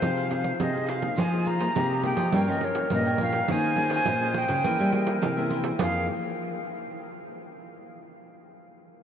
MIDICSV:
0, 0, Header, 1, 7, 480
1, 0, Start_track
1, 0, Key_signature, -4, "minor"
1, 0, Tempo, 576369
1, 984, Time_signature, 4, 2, 24, 8
1, 7520, End_track
2, 0, Start_track
2, 0, Title_t, "Flute"
2, 0, Program_c, 0, 73
2, 0, Note_on_c, 0, 77, 76
2, 463, Note_off_c, 0, 77, 0
2, 509, Note_on_c, 0, 75, 80
2, 746, Note_on_c, 0, 77, 84
2, 758, Note_off_c, 0, 75, 0
2, 992, Note_on_c, 0, 80, 98
2, 1005, Note_off_c, 0, 77, 0
2, 1226, Note_on_c, 0, 82, 108
2, 1238, Note_off_c, 0, 80, 0
2, 1706, Note_off_c, 0, 82, 0
2, 1712, Note_on_c, 0, 79, 93
2, 2080, Note_on_c, 0, 75, 91
2, 2093, Note_off_c, 0, 79, 0
2, 2203, Note_on_c, 0, 73, 89
2, 2215, Note_off_c, 0, 75, 0
2, 2435, Note_off_c, 0, 73, 0
2, 2449, Note_on_c, 0, 75, 92
2, 2662, Note_off_c, 0, 75, 0
2, 2683, Note_on_c, 0, 77, 91
2, 2927, Note_on_c, 0, 80, 101
2, 2940, Note_off_c, 0, 77, 0
2, 3277, Note_off_c, 0, 80, 0
2, 3285, Note_on_c, 0, 80, 105
2, 3612, Note_off_c, 0, 80, 0
2, 3642, Note_on_c, 0, 79, 96
2, 4561, Note_off_c, 0, 79, 0
2, 4836, Note_on_c, 0, 77, 89
2, 5055, Note_off_c, 0, 77, 0
2, 7520, End_track
3, 0, Start_track
3, 0, Title_t, "Cavaquinho"
3, 0, Program_c, 1, 24
3, 15, Note_on_c, 1, 63, 72
3, 16, Note_on_c, 1, 68, 75
3, 21, Note_on_c, 1, 72, 77
3, 31, Note_on_c, 1, 77, 72
3, 130, Note_off_c, 1, 63, 0
3, 130, Note_off_c, 1, 68, 0
3, 133, Note_off_c, 1, 72, 0
3, 138, Note_off_c, 1, 77, 0
3, 140, Note_on_c, 1, 63, 69
3, 140, Note_on_c, 1, 68, 76
3, 144, Note_on_c, 1, 72, 69
3, 147, Note_on_c, 1, 77, 76
3, 217, Note_off_c, 1, 63, 0
3, 217, Note_off_c, 1, 68, 0
3, 219, Note_off_c, 1, 72, 0
3, 220, Note_off_c, 1, 77, 0
3, 240, Note_on_c, 1, 63, 46
3, 249, Note_on_c, 1, 68, 50
3, 257, Note_on_c, 1, 72, 54
3, 260, Note_on_c, 1, 77, 51
3, 598, Note_off_c, 1, 77, 0
3, 603, Note_off_c, 1, 63, 0
3, 607, Note_off_c, 1, 68, 0
3, 607, Note_off_c, 1, 72, 0
3, 608, Note_on_c, 1, 77, 46
3, 617, Note_on_c, 1, 72, 40
3, 626, Note_on_c, 1, 68, 38
3, 716, Note_off_c, 1, 68, 0
3, 719, Note_on_c, 1, 63, 69
3, 722, Note_off_c, 1, 72, 0
3, 726, Note_on_c, 1, 68, 69
3, 727, Note_off_c, 1, 77, 0
3, 732, Note_on_c, 1, 72, 80
3, 736, Note_on_c, 1, 77, 82
3, 825, Note_off_c, 1, 77, 0
3, 835, Note_on_c, 1, 77, 41
3, 837, Note_off_c, 1, 72, 0
3, 842, Note_off_c, 1, 63, 0
3, 846, Note_off_c, 1, 68, 0
3, 847, Note_on_c, 1, 72, 39
3, 855, Note_on_c, 1, 68, 39
3, 960, Note_off_c, 1, 77, 0
3, 961, Note_off_c, 1, 68, 0
3, 964, Note_off_c, 1, 72, 0
3, 964, Note_on_c, 1, 65, 71
3, 971, Note_on_c, 1, 68, 72
3, 974, Note_on_c, 1, 72, 72
3, 982, Note_on_c, 1, 75, 84
3, 1191, Note_off_c, 1, 65, 0
3, 1198, Note_off_c, 1, 68, 0
3, 1201, Note_on_c, 1, 65, 50
3, 1203, Note_off_c, 1, 72, 0
3, 1208, Note_on_c, 1, 68, 54
3, 1211, Note_off_c, 1, 75, 0
3, 1213, Note_on_c, 1, 72, 47
3, 1221, Note_on_c, 1, 75, 53
3, 1314, Note_off_c, 1, 65, 0
3, 1318, Note_off_c, 1, 68, 0
3, 1322, Note_off_c, 1, 72, 0
3, 1324, Note_off_c, 1, 75, 0
3, 1324, Note_on_c, 1, 65, 72
3, 1328, Note_on_c, 1, 68, 67
3, 1332, Note_on_c, 1, 72, 79
3, 1334, Note_on_c, 1, 75, 70
3, 1410, Note_off_c, 1, 65, 0
3, 1412, Note_off_c, 1, 68, 0
3, 1414, Note_off_c, 1, 72, 0
3, 1415, Note_off_c, 1, 75, 0
3, 1586, Note_on_c, 1, 75, 48
3, 1593, Note_on_c, 1, 72, 48
3, 1600, Note_on_c, 1, 68, 43
3, 1684, Note_off_c, 1, 68, 0
3, 1690, Note_on_c, 1, 65, 70
3, 1693, Note_off_c, 1, 72, 0
3, 1694, Note_on_c, 1, 68, 77
3, 1696, Note_off_c, 1, 75, 0
3, 1703, Note_on_c, 1, 72, 78
3, 1707, Note_on_c, 1, 75, 70
3, 1795, Note_off_c, 1, 75, 0
3, 1805, Note_on_c, 1, 75, 53
3, 1806, Note_off_c, 1, 72, 0
3, 1808, Note_off_c, 1, 65, 0
3, 1810, Note_off_c, 1, 68, 0
3, 1816, Note_on_c, 1, 72, 46
3, 1824, Note_on_c, 1, 68, 36
3, 1926, Note_off_c, 1, 75, 0
3, 1932, Note_off_c, 1, 72, 0
3, 1936, Note_off_c, 1, 68, 0
3, 1940, Note_on_c, 1, 65, 64
3, 1946, Note_on_c, 1, 70, 80
3, 1955, Note_on_c, 1, 73, 75
3, 1959, Note_on_c, 1, 79, 81
3, 2054, Note_off_c, 1, 65, 0
3, 2057, Note_off_c, 1, 70, 0
3, 2061, Note_off_c, 1, 73, 0
3, 2063, Note_off_c, 1, 79, 0
3, 2065, Note_on_c, 1, 65, 70
3, 2071, Note_on_c, 1, 70, 77
3, 2074, Note_on_c, 1, 73, 74
3, 2077, Note_on_c, 1, 79, 73
3, 2141, Note_off_c, 1, 65, 0
3, 2144, Note_off_c, 1, 70, 0
3, 2145, Note_off_c, 1, 73, 0
3, 2146, Note_off_c, 1, 79, 0
3, 2179, Note_on_c, 1, 65, 49
3, 2189, Note_on_c, 1, 70, 53
3, 2195, Note_on_c, 1, 73, 53
3, 2202, Note_on_c, 1, 79, 56
3, 2533, Note_off_c, 1, 65, 0
3, 2535, Note_off_c, 1, 79, 0
3, 2538, Note_off_c, 1, 70, 0
3, 2541, Note_off_c, 1, 73, 0
3, 2545, Note_on_c, 1, 79, 52
3, 2559, Note_on_c, 1, 73, 49
3, 2567, Note_on_c, 1, 70, 38
3, 2653, Note_off_c, 1, 70, 0
3, 2656, Note_off_c, 1, 79, 0
3, 2656, Note_on_c, 1, 65, 79
3, 2660, Note_off_c, 1, 73, 0
3, 2663, Note_on_c, 1, 70, 74
3, 2670, Note_on_c, 1, 73, 74
3, 2673, Note_on_c, 1, 79, 83
3, 2769, Note_off_c, 1, 79, 0
3, 2772, Note_off_c, 1, 65, 0
3, 2775, Note_off_c, 1, 70, 0
3, 2779, Note_off_c, 1, 73, 0
3, 2779, Note_on_c, 1, 79, 50
3, 2790, Note_on_c, 1, 73, 42
3, 2796, Note_on_c, 1, 70, 40
3, 2893, Note_off_c, 1, 79, 0
3, 2899, Note_off_c, 1, 73, 0
3, 2902, Note_off_c, 1, 70, 0
3, 2910, Note_on_c, 1, 63, 71
3, 2917, Note_on_c, 1, 68, 78
3, 2926, Note_on_c, 1, 73, 80
3, 2929, Note_on_c, 1, 75, 81
3, 3127, Note_off_c, 1, 63, 0
3, 3137, Note_on_c, 1, 63, 49
3, 3140, Note_off_c, 1, 68, 0
3, 3145, Note_off_c, 1, 73, 0
3, 3149, Note_off_c, 1, 75, 0
3, 3150, Note_on_c, 1, 68, 54
3, 3155, Note_on_c, 1, 73, 54
3, 3158, Note_on_c, 1, 75, 56
3, 3249, Note_off_c, 1, 63, 0
3, 3255, Note_off_c, 1, 68, 0
3, 3259, Note_off_c, 1, 73, 0
3, 3259, Note_on_c, 1, 63, 72
3, 3260, Note_off_c, 1, 75, 0
3, 3265, Note_on_c, 1, 68, 80
3, 3269, Note_on_c, 1, 73, 76
3, 3270, Note_on_c, 1, 75, 81
3, 3338, Note_off_c, 1, 63, 0
3, 3341, Note_off_c, 1, 68, 0
3, 3343, Note_off_c, 1, 73, 0
3, 3344, Note_off_c, 1, 75, 0
3, 3510, Note_on_c, 1, 75, 53
3, 3518, Note_on_c, 1, 73, 52
3, 3526, Note_on_c, 1, 68, 43
3, 3612, Note_off_c, 1, 68, 0
3, 3615, Note_on_c, 1, 63, 70
3, 3619, Note_off_c, 1, 75, 0
3, 3620, Note_off_c, 1, 73, 0
3, 3622, Note_on_c, 1, 68, 78
3, 3630, Note_on_c, 1, 73, 75
3, 3636, Note_on_c, 1, 75, 81
3, 3719, Note_off_c, 1, 75, 0
3, 3728, Note_off_c, 1, 73, 0
3, 3729, Note_on_c, 1, 75, 47
3, 3731, Note_off_c, 1, 63, 0
3, 3735, Note_off_c, 1, 68, 0
3, 3738, Note_on_c, 1, 73, 44
3, 3749, Note_on_c, 1, 68, 39
3, 3849, Note_off_c, 1, 75, 0
3, 3853, Note_off_c, 1, 73, 0
3, 3857, Note_on_c, 1, 64, 76
3, 3859, Note_off_c, 1, 68, 0
3, 3867, Note_on_c, 1, 70, 76
3, 3869, Note_on_c, 1, 72, 84
3, 3879, Note_on_c, 1, 76, 82
3, 3973, Note_off_c, 1, 64, 0
3, 3977, Note_off_c, 1, 70, 0
3, 3979, Note_off_c, 1, 72, 0
3, 3983, Note_off_c, 1, 76, 0
3, 3984, Note_on_c, 1, 64, 68
3, 3986, Note_on_c, 1, 70, 70
3, 3993, Note_on_c, 1, 72, 77
3, 3993, Note_on_c, 1, 76, 87
3, 4060, Note_off_c, 1, 64, 0
3, 4062, Note_off_c, 1, 70, 0
3, 4065, Note_off_c, 1, 72, 0
3, 4065, Note_off_c, 1, 76, 0
3, 4088, Note_on_c, 1, 64, 50
3, 4095, Note_on_c, 1, 70, 53
3, 4101, Note_on_c, 1, 72, 54
3, 4106, Note_on_c, 1, 76, 59
3, 4448, Note_off_c, 1, 64, 0
3, 4452, Note_off_c, 1, 70, 0
3, 4455, Note_off_c, 1, 72, 0
3, 4457, Note_off_c, 1, 76, 0
3, 4469, Note_on_c, 1, 76, 52
3, 4475, Note_on_c, 1, 72, 48
3, 4486, Note_on_c, 1, 70, 44
3, 4577, Note_off_c, 1, 70, 0
3, 4578, Note_on_c, 1, 64, 73
3, 4579, Note_off_c, 1, 72, 0
3, 4579, Note_off_c, 1, 76, 0
3, 4587, Note_on_c, 1, 70, 72
3, 4589, Note_on_c, 1, 72, 84
3, 4596, Note_on_c, 1, 76, 78
3, 4687, Note_off_c, 1, 76, 0
3, 4693, Note_off_c, 1, 64, 0
3, 4696, Note_off_c, 1, 72, 0
3, 4697, Note_on_c, 1, 76, 50
3, 4698, Note_off_c, 1, 70, 0
3, 4706, Note_on_c, 1, 72, 42
3, 4715, Note_on_c, 1, 70, 41
3, 4813, Note_off_c, 1, 76, 0
3, 4817, Note_off_c, 1, 72, 0
3, 4821, Note_off_c, 1, 70, 0
3, 4830, Note_on_c, 1, 65, 72
3, 4834, Note_on_c, 1, 68, 84
3, 4839, Note_on_c, 1, 72, 77
3, 4847, Note_on_c, 1, 75, 85
3, 5020, Note_off_c, 1, 65, 0
3, 5023, Note_off_c, 1, 68, 0
3, 5025, Note_off_c, 1, 72, 0
3, 5029, Note_off_c, 1, 75, 0
3, 7520, End_track
4, 0, Start_track
4, 0, Title_t, "Clarinet"
4, 0, Program_c, 2, 71
4, 0, Note_on_c, 2, 72, 101
4, 471, Note_off_c, 2, 72, 0
4, 505, Note_on_c, 2, 68, 69
4, 952, Note_off_c, 2, 68, 0
4, 982, Note_on_c, 2, 65, 75
4, 1431, Note_off_c, 2, 65, 0
4, 1456, Note_on_c, 2, 67, 91
4, 1908, Note_off_c, 2, 67, 0
4, 1935, Note_on_c, 2, 70, 101
4, 2810, Note_off_c, 2, 70, 0
4, 2848, Note_on_c, 2, 71, 72
4, 2910, Note_on_c, 2, 72, 106
4, 2922, Note_off_c, 2, 71, 0
4, 3874, Note_on_c, 2, 70, 92
4, 3886, Note_off_c, 2, 72, 0
4, 4688, Note_off_c, 2, 70, 0
4, 4830, Note_on_c, 2, 68, 70
4, 5052, Note_off_c, 2, 68, 0
4, 7520, End_track
5, 0, Start_track
5, 0, Title_t, "Nylon-string guitar"
5, 0, Program_c, 3, 24
5, 17, Note_on_c, 3, 53, 54
5, 18, Note_on_c, 3, 60, 51
5, 21, Note_on_c, 3, 63, 59
5, 23, Note_on_c, 3, 68, 58
5, 161, Note_off_c, 3, 60, 0
5, 164, Note_off_c, 3, 63, 0
5, 164, Note_off_c, 3, 68, 0
5, 253, Note_on_c, 3, 60, 47
5, 261, Note_on_c, 3, 63, 49
5, 263, Note_on_c, 3, 68, 57
5, 477, Note_off_c, 3, 53, 0
5, 502, Note_on_c, 3, 48, 59
5, 581, Note_off_c, 3, 60, 0
5, 583, Note_off_c, 3, 63, 0
5, 585, Note_off_c, 3, 68, 0
5, 628, Note_on_c, 3, 60, 55
5, 631, Note_on_c, 3, 63, 54
5, 635, Note_on_c, 3, 68, 60
5, 828, Note_off_c, 3, 60, 0
5, 830, Note_off_c, 3, 63, 0
5, 831, Note_off_c, 3, 68, 0
5, 850, Note_on_c, 3, 58, 56
5, 853, Note_on_c, 3, 63, 63
5, 855, Note_on_c, 3, 68, 66
5, 960, Note_off_c, 3, 48, 0
5, 979, Note_on_c, 3, 53, 55
5, 1090, Note_off_c, 3, 58, 0
5, 1096, Note_off_c, 3, 63, 0
5, 1098, Note_off_c, 3, 68, 0
5, 1100, Note_on_c, 3, 58, 57
5, 1105, Note_on_c, 3, 63, 59
5, 1109, Note_on_c, 3, 68, 67
5, 1304, Note_off_c, 3, 58, 0
5, 1307, Note_off_c, 3, 63, 0
5, 1308, Note_off_c, 3, 68, 0
5, 1332, Note_on_c, 3, 58, 67
5, 1337, Note_on_c, 3, 63, 60
5, 1338, Note_on_c, 3, 68, 62
5, 1420, Note_off_c, 3, 58, 0
5, 1423, Note_off_c, 3, 63, 0
5, 1423, Note_off_c, 3, 68, 0
5, 1439, Note_off_c, 3, 53, 0
5, 1462, Note_on_c, 3, 48, 54
5, 1462, Note_on_c, 3, 58, 58
5, 1466, Note_on_c, 3, 63, 54
5, 1471, Note_on_c, 3, 68, 57
5, 1605, Note_off_c, 3, 58, 0
5, 1607, Note_off_c, 3, 63, 0
5, 1608, Note_off_c, 3, 68, 0
5, 1692, Note_on_c, 3, 58, 59
5, 1696, Note_on_c, 3, 63, 54
5, 1701, Note_on_c, 3, 68, 60
5, 1840, Note_off_c, 3, 58, 0
5, 1843, Note_off_c, 3, 63, 0
5, 1844, Note_off_c, 3, 68, 0
5, 1921, Note_off_c, 3, 48, 0
5, 1935, Note_on_c, 3, 43, 58
5, 1939, Note_on_c, 3, 53, 60
5, 1940, Note_on_c, 3, 58, 59
5, 1945, Note_on_c, 3, 61, 66
5, 2251, Note_off_c, 3, 58, 0
5, 2252, Note_off_c, 3, 53, 0
5, 2255, Note_off_c, 3, 61, 0
5, 2398, Note_off_c, 3, 43, 0
5, 2426, Note_on_c, 3, 43, 61
5, 2426, Note_on_c, 3, 53, 64
5, 2430, Note_on_c, 3, 58, 64
5, 2435, Note_on_c, 3, 61, 67
5, 2567, Note_off_c, 3, 53, 0
5, 2570, Note_off_c, 3, 58, 0
5, 2571, Note_off_c, 3, 61, 0
5, 2666, Note_on_c, 3, 53, 58
5, 2670, Note_on_c, 3, 58, 54
5, 2674, Note_on_c, 3, 61, 66
5, 2821, Note_off_c, 3, 53, 0
5, 2822, Note_off_c, 3, 58, 0
5, 2825, Note_off_c, 3, 61, 0
5, 2883, Note_off_c, 3, 43, 0
5, 2910, Note_on_c, 3, 51, 59
5, 2911, Note_on_c, 3, 58, 66
5, 2916, Note_on_c, 3, 61, 55
5, 2919, Note_on_c, 3, 68, 62
5, 3110, Note_off_c, 3, 58, 0
5, 3114, Note_off_c, 3, 61, 0
5, 3114, Note_off_c, 3, 68, 0
5, 3139, Note_on_c, 3, 58, 52
5, 3143, Note_on_c, 3, 61, 55
5, 3147, Note_on_c, 3, 68, 60
5, 3365, Note_off_c, 3, 51, 0
5, 3368, Note_off_c, 3, 58, 0
5, 3371, Note_off_c, 3, 61, 0
5, 3372, Note_off_c, 3, 68, 0
5, 3387, Note_on_c, 3, 46, 54
5, 3510, Note_on_c, 3, 58, 53
5, 3514, Note_on_c, 3, 61, 61
5, 3517, Note_on_c, 3, 68, 64
5, 3830, Note_off_c, 3, 58, 0
5, 3833, Note_off_c, 3, 61, 0
5, 3833, Note_off_c, 3, 68, 0
5, 3843, Note_off_c, 3, 46, 0
5, 3868, Note_on_c, 3, 52, 58
5, 3872, Note_on_c, 3, 58, 56
5, 3873, Note_on_c, 3, 61, 53
5, 3880, Note_on_c, 3, 68, 64
5, 4071, Note_off_c, 3, 58, 0
5, 4072, Note_off_c, 3, 61, 0
5, 4074, Note_off_c, 3, 68, 0
5, 4103, Note_on_c, 3, 58, 58
5, 4106, Note_on_c, 3, 61, 58
5, 4109, Note_on_c, 3, 68, 59
5, 4324, Note_off_c, 3, 52, 0
5, 4330, Note_off_c, 3, 61, 0
5, 4331, Note_off_c, 3, 58, 0
5, 4333, Note_off_c, 3, 68, 0
5, 4349, Note_on_c, 3, 52, 64
5, 4472, Note_on_c, 3, 58, 61
5, 4476, Note_on_c, 3, 61, 57
5, 4480, Note_on_c, 3, 68, 62
5, 4791, Note_off_c, 3, 58, 0
5, 4793, Note_off_c, 3, 61, 0
5, 4796, Note_off_c, 3, 68, 0
5, 4804, Note_off_c, 3, 52, 0
5, 4826, Note_on_c, 3, 53, 63
5, 4830, Note_on_c, 3, 58, 70
5, 4836, Note_on_c, 3, 63, 68
5, 4839, Note_on_c, 3, 68, 79
5, 5490, Note_off_c, 3, 53, 0
5, 5490, Note_off_c, 3, 58, 0
5, 5490, Note_off_c, 3, 63, 0
5, 5490, Note_off_c, 3, 68, 0
5, 7520, End_track
6, 0, Start_track
6, 0, Title_t, "Nylon-string guitar"
6, 0, Program_c, 4, 24
6, 18, Note_on_c, 4, 48, 87
6, 429, Note_off_c, 4, 48, 0
6, 499, Note_on_c, 4, 48, 79
6, 910, Note_off_c, 4, 48, 0
6, 979, Note_on_c, 4, 53, 89
6, 1390, Note_off_c, 4, 53, 0
6, 1460, Note_on_c, 4, 48, 86
6, 1769, Note_off_c, 4, 48, 0
6, 1803, Note_on_c, 4, 53, 85
6, 1915, Note_off_c, 4, 53, 0
6, 1935, Note_on_c, 4, 55, 94
6, 2042, Note_off_c, 4, 55, 0
6, 2065, Note_on_c, 4, 61, 80
6, 2372, Note_off_c, 4, 61, 0
6, 2426, Note_on_c, 4, 46, 82
6, 2834, Note_off_c, 4, 46, 0
6, 2910, Note_on_c, 4, 51, 93
6, 3317, Note_off_c, 4, 51, 0
6, 3389, Note_on_c, 4, 46, 92
6, 3694, Note_off_c, 4, 46, 0
6, 3740, Note_on_c, 4, 49, 89
6, 3845, Note_off_c, 4, 49, 0
6, 3866, Note_on_c, 4, 52, 95
6, 3969, Note_off_c, 4, 52, 0
6, 3996, Note_on_c, 4, 55, 85
6, 4298, Note_off_c, 4, 55, 0
6, 4346, Note_on_c, 4, 48, 86
6, 4754, Note_off_c, 4, 48, 0
6, 4834, Note_on_c, 4, 41, 90
6, 5054, Note_off_c, 4, 41, 0
6, 7520, End_track
7, 0, Start_track
7, 0, Title_t, "Pandeiro"
7, 18, Note_on_c, 9, 54, 78
7, 102, Note_off_c, 9, 54, 0
7, 141, Note_on_c, 9, 54, 37
7, 225, Note_off_c, 9, 54, 0
7, 257, Note_on_c, 9, 54, 66
7, 340, Note_off_c, 9, 54, 0
7, 369, Note_on_c, 9, 54, 61
7, 452, Note_off_c, 9, 54, 0
7, 498, Note_on_c, 9, 54, 80
7, 582, Note_off_c, 9, 54, 0
7, 625, Note_on_c, 9, 54, 34
7, 708, Note_off_c, 9, 54, 0
7, 738, Note_on_c, 9, 54, 61
7, 821, Note_off_c, 9, 54, 0
7, 853, Note_on_c, 9, 54, 60
7, 937, Note_off_c, 9, 54, 0
7, 986, Note_on_c, 9, 54, 78
7, 1069, Note_off_c, 9, 54, 0
7, 1116, Note_on_c, 9, 54, 34
7, 1199, Note_off_c, 9, 54, 0
7, 1224, Note_on_c, 9, 54, 55
7, 1307, Note_off_c, 9, 54, 0
7, 1338, Note_on_c, 9, 54, 64
7, 1422, Note_off_c, 9, 54, 0
7, 1465, Note_on_c, 9, 54, 85
7, 1549, Note_off_c, 9, 54, 0
7, 1590, Note_on_c, 9, 54, 34
7, 1674, Note_off_c, 9, 54, 0
7, 1694, Note_on_c, 9, 54, 58
7, 1778, Note_off_c, 9, 54, 0
7, 1806, Note_on_c, 9, 54, 67
7, 1890, Note_off_c, 9, 54, 0
7, 1936, Note_on_c, 9, 54, 79
7, 2019, Note_off_c, 9, 54, 0
7, 2058, Note_on_c, 9, 54, 38
7, 2141, Note_off_c, 9, 54, 0
7, 2173, Note_on_c, 9, 54, 58
7, 2256, Note_off_c, 9, 54, 0
7, 2290, Note_on_c, 9, 54, 68
7, 2374, Note_off_c, 9, 54, 0
7, 2417, Note_on_c, 9, 54, 83
7, 2500, Note_off_c, 9, 54, 0
7, 2541, Note_on_c, 9, 54, 35
7, 2624, Note_off_c, 9, 54, 0
7, 2650, Note_on_c, 9, 54, 59
7, 2733, Note_off_c, 9, 54, 0
7, 2770, Note_on_c, 9, 54, 71
7, 2853, Note_off_c, 9, 54, 0
7, 2901, Note_on_c, 9, 54, 82
7, 2984, Note_off_c, 9, 54, 0
7, 3025, Note_on_c, 9, 54, 35
7, 3108, Note_off_c, 9, 54, 0
7, 3135, Note_on_c, 9, 54, 53
7, 3218, Note_off_c, 9, 54, 0
7, 3250, Note_on_c, 9, 54, 69
7, 3333, Note_off_c, 9, 54, 0
7, 3377, Note_on_c, 9, 54, 86
7, 3460, Note_off_c, 9, 54, 0
7, 3503, Note_on_c, 9, 54, 34
7, 3586, Note_off_c, 9, 54, 0
7, 3618, Note_on_c, 9, 54, 60
7, 3701, Note_off_c, 9, 54, 0
7, 3735, Note_on_c, 9, 54, 63
7, 3818, Note_off_c, 9, 54, 0
7, 3868, Note_on_c, 9, 54, 77
7, 3951, Note_off_c, 9, 54, 0
7, 3994, Note_on_c, 9, 54, 38
7, 4077, Note_off_c, 9, 54, 0
7, 4103, Note_on_c, 9, 54, 59
7, 4186, Note_off_c, 9, 54, 0
7, 4221, Note_on_c, 9, 54, 70
7, 4304, Note_off_c, 9, 54, 0
7, 4352, Note_on_c, 9, 54, 84
7, 4435, Note_off_c, 9, 54, 0
7, 4478, Note_on_c, 9, 54, 39
7, 4561, Note_off_c, 9, 54, 0
7, 4585, Note_on_c, 9, 54, 57
7, 4668, Note_off_c, 9, 54, 0
7, 4695, Note_on_c, 9, 54, 73
7, 4778, Note_off_c, 9, 54, 0
7, 4823, Note_on_c, 9, 54, 103
7, 4906, Note_off_c, 9, 54, 0
7, 7520, End_track
0, 0, End_of_file